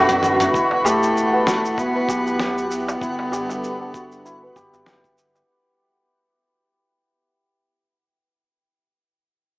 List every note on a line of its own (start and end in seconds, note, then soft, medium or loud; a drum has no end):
0.00 0.48 F#2 loud
0.00 0.55 B3 medium
0.00 1.33 B3 medium
0.00 0.52 D4 medium
0.00 0.54 E4 medium
0.00 0.23 F#4 loud
0.00 0.91 F#4 loud
0.00 0.52 A4 medium
0.00 0.55 B4 medium
0.00 1.95 B4 medium
0.00 0.52 E5 medium
0.00 0.52 F#5 medium
0.09 kick medium
0.09 closed hi-hat soft
0.09 mid tom medium
0.09 shaker soft
0.23 mid tom loud
0.23 shaker medium
0.40 closed hi-hat soft
0.40 mid tom medium
0.40 darbuka ka medium
0.40 shaker soft
0.54 2.03 E1 loud
0.54 2.99 E4 medium
0.54 1.78 E4 medium
0.54 5.50 F#4 medium
0.54 2.98 B4 medium
0.54 2.98 F#5 medium
0.54 5.50 F#5 medium
0.54 kick loud
0.54 shaker soft
0.71 darbuka tek medium
0.85 1.80 A3 loud
0.85 1.53 G4 medium
0.85 darbuka dum medium
0.85 shaker medium
1.03 shaker soft
1.17 shaker soft
1.33 3.80 B3 medium
1.47 2.15 F#4 medium
1.47 kick loud
1.47 snare medium
1.47 shaker medium
1.65 shaker soft
1.78 2.70 B3 loud
1.78 3.02 E4 medium
1.78 kick medium
1.78 shaker soft
1.95 4.43 B4 medium
1.95 darbuka ka soft
2.09 2.95 B1 medium
2.09 2.39 G4 medium
2.09 kick medium
2.09 shaker medium
2.27 shaker soft
2.39 3.32 G4 medium
2.39 snare medium
2.39 shaker soft
2.58 shaker soft
2.70 4.83 B3 loud
2.70 shaker medium
2.88 darbuka tek medium
2.88 shaker soft
3.01 4.50 G1 medium
3.01 5.46 G3 medium
3.01 5.46 D4 medium
3.01 4.25 E4 medium
3.01 5.46 A4 medium
3.01 5.47 B4 medium
3.01 kick loud
3.01 shaker soft
3.19 darbuka tek medium
3.32 4.00 G4 medium
3.32 darbuka ka soft
3.32 darbuka dum loud
3.32 shaker medium
3.49 darbuka tek medium
3.49 shaker soft
3.64 shaker soft
3.81 7.95 B3 medium
3.94 4.62 F#4 medium
3.94 kick loud
3.94 shaker medium
4.12 shaker soft
4.25 7.74 E4 medium
4.25 shaker soft
4.43 7.16 B4 medium
4.56 5.43 G1 medium
4.56 4.87 G4 medium
4.56 kick medium
4.56 darbuka dum medium
4.56 shaker medium
4.74 darbuka dum medium
4.74 shaker soft
4.86 8.01 G4 medium
4.86 snare medium
4.86 darbuka tek medium
4.86 shaker soft
5.04 kick medium
5.04 shaker soft
5.18 shaker medium
5.35 darbuka ka medium
5.35 shaker soft